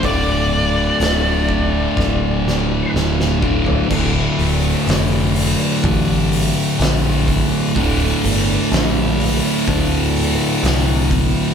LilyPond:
<<
  \new Staff \with { instrumentName = "Lead electric guitar" } { \time 4/4 \key c \mixolydian \tempo 4 = 62 d''2. r4 | r1 | r1 | }
  \new Staff \with { instrumentName = "Distorted electric guitar" } { \clef bass \time 4/4 \key c \mixolydian <d, a, d>2.~ <d, a, d>8 <d, a, d>8 | <d, a, d>1 | <d, a, d>1 | }
  \new Staff \with { instrumentName = "Picked electric bass" } { \clef bass \time 4/4 \key c \mixolydian d,,4 d,,4 d,,4 d,,4 | d,,8 d,,8 f,,4 a,,4 bes,,4 | d,,8 g,,8 bes,,4 d,4 c,4 | }
  \new DrumStaff \with { instrumentName = "Drums" } \drummode { \time 4/4 <hho bd>4 <hho sn>8 bd8 <bd sn>8 sn8 sn16 sn16 bd16 tomfh16 | <cymc bd>8 hho8 <hho sn>8 hho8 <hho bd>8 hho8 <hho sn>8 <hho bd>8 | <hho bd>8 hho8 <hho sn>8 hho8 <hho bd>8 hho8 <hho sn>8 <hho bd>8 | }
>>